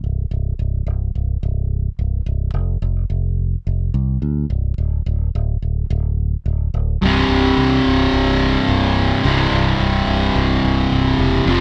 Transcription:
0.04 C1
0.31 C1
0.59 C1
0.87 C1
1.15 C1
1.43 C1
1.99 C1
2.26 C1
2.54 F1
2.82 F1
3.10 F1
3.67 F1
3.94 C2
4.22 D2
4.50 C1
4.78 D1
5.06 D1
5.35 D1
5.62 D1
5.90 D1
6.46 D1
6.74 D1
7.02 C1 C2 G2 C3
7.29 C1
7.58 C2
7.86 C1
8.13 C1
8.69 C1
9.24 C1 C2 G2 C3
9.52 C1
9.80 C1
10.08 C1
10.36 C1
10.64 C1
10.92 C1
11.19 E1
11.46 F1 F2 C3
11.50 F3

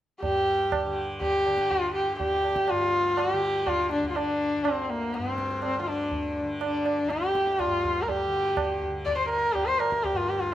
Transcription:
0.22 G2 G4, tabla tin, tabla ge
0.72 tabla na, tabla ge
0.85 D3
1.21 G4, tabla tin, tabla ge
1.46 D3, tabla na
1.58 tabla ke
1.71 F4, tabla tin, tabla ge
1.95 G4
2.09 D2
2.20 G4, tabla tin, tabla ge
2.44 tabla na
2.56 tabla ke
2.68 G2 F4, tabla na
3.17 F#4, tabla na
3.33 D3 G4
3.67 F4, tabla na, tabla ge
3.91 D4, tabla te
3.95 D3
4.03 tabla ge
4.10 F4
4.16 D4, tabla na
4.57 D2
4.65 C4, tabla na
4.83 C4
4.90 A#3
5.14 C4, tabla te
5.18 G2
5.26 tabla te
5.38 tabla ke
5.51 tabla te
5.62 C4, tabla na
5.80 D3 F4
5.88 D4
6.12 tabla tin, tabla ge
6.42 D3
6.61 D4, tabla na
6.86 tabla na
7.04 D2
7.10 G4, tabla te
7.22 tabla te
7.35 tabla ke
7.47 tabla te
7.59 F4, tabla na, tabla ge
7.66 G2
7.84 tabla ge
8.02 A#4
8.08 G4, tabla tin, tabla ge
8.28 D3
8.57 tabla na, tabla ge
8.82 tabla ge
8.89 D3
9.05 D5, tabla tin, tabla ge
9.17 C5
9.29 A#4
9.51 D2 G4
9.55 tabla tin, tabla ge
9.66 C5
9.79 A#4, tabla na
9.92 tabla ke
10.04 G4, tabla tin, tabla ge
10.13 G2 F4
10.29 G4
10.40 F4

